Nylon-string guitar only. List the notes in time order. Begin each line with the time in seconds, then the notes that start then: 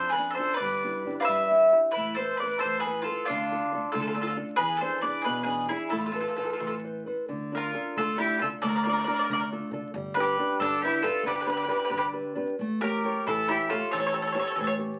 Already playing: F3
0.18 D4 F4 A4
0.38 D4 F4 A4
0.61 G3
0.84 D4 E4 G4
1.06 D4 E4 G4
1.29 G3
1.51 D4 E4 G4
1.71 D4 E4 G4
1.96 A3
2.18 A4 B4 C5
2.42 A4 B4 C5
2.65 E3
2.86 A4 B4 C5
3.08 A4 B4 C5
3.29 D3
3.51 D4 F4 A4
3.73 D4 F4 A4
3.95 A3
4.16 D4 F4 A4
4.36 D4 F4 A4
4.60 E3
4.81 D4 E4 G#4
5.02 D4 E4 G#4
5.25 B2
5.45 D4 E4 G#4
5.71 D4 E4 G#4
5.92 A3
6.14 A4 B4 C5
6.38 A4 B4 C5
6.60 E3
6.83 A4 B4 C5
7.06 A4 B4 C5
7.28 D3
7.52 D4 F4
7.74 D4 F4 A4
7.97 A3
8.17 D4 F4 A4
8.41 D4 F4 A4
8.63 A3
8.86 D4 F4 A4
9.07 D4 F4 A4
9.30 A3
9.51 D4 F4 A4
9.72 D4 F4 A4
9.95 G3
10.16 D4 G4 B4
10.39 D4 G4 B4
10.61 D3
10.82 D4 G4 B4
11.02 D4 G4 B4
11.24 D3
11.47 D4 G4 B4
11.68 D4 G4 B4
11.90 D3
12.13 D4 G4 B4
12.35 D4 G4 B4
12.61 A3
12.83 A3 G4 C#5
13.04 G4 A4 C#5
13.27 E3
13.49 G4 A4 C#5
13.70 G4 A4 C#5
13.93 E3
14.13 G4 A4 C#5
14.35 G4 A4 C#5
14.56 E3
14.78 G4 A4 C#5